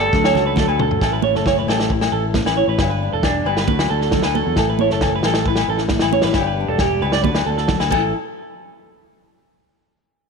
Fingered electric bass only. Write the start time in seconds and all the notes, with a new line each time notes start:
0.13 D2
0.35 C#2
0.57 D2
1.01 A1
1.34 F#1
1.67 A1
2.12 A1
2.45 A1
2.68 A1
2.79 G1
3.13 E1
3.45 G1
3.68 D2
3.90 D2
4.24 D2
4.47 E2
4.57 A1
4.91 F#1
5.24 A1
5.68 A1
6.02 A1
6.24 A1
6.34 G1
6.69 E1
7.01 C#2
7.24 D2
7.46 D2
7.80 D2
7.91 A1